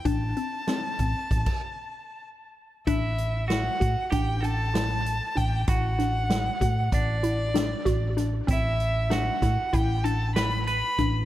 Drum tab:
CC |---------x--------|------------------|------------------|------------------|
HH |x-x-x-x-x---------|x-x-x-x-x-x-x-x-x-|x-x-x-x-x-x-x-x-x-|x-x-x-x-x-x-x-x-x-|
SD |----o-------------|----o-------o-----|--o-o-------o-o-o-|----o-o-----o---o-|
BD |o-----o-oo--------|o-----o-o-------o-|o-----o-o-----o---|o-----o-o-------o-|